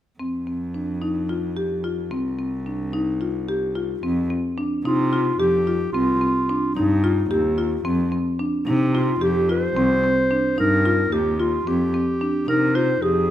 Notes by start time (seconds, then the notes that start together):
0.20 F2 C4
0.47 C4
0.74 D4
1.02 D#4
1.29 F4
1.57 G4
1.84 F4
2.11 C2 C4
2.39 C4
2.66 D4
2.93 D#4
3.21 F4
3.49 G4
3.76 F4
4.03 F2 C4
4.30 C4
4.58 D4
4.85 C3 D#4 F4
5.13 F4
5.39 F2 G4
5.67 F4
5.92 C2 C4 F4
6.21 C4
6.49 D4
6.75 G2 D#4
7.04 F4
7.31 D#2 G4
7.58 F4
7.85 F2 C4
8.12 C4
8.39 D4
8.66 C3 D#4
8.95 F4
9.21 F2 G4
9.49 F4 C5
9.75 C2 C4
10.04 C4
10.31 D4
10.57 G2 D#4 A#4
10.85 F4
11.11 D#2 G4
11.40 F4
11.66 F2 C4 G4
11.94 C4
12.21 D4
12.48 C3 D#4 A#4
12.75 F4 C5
13.02 F2 G4 G#4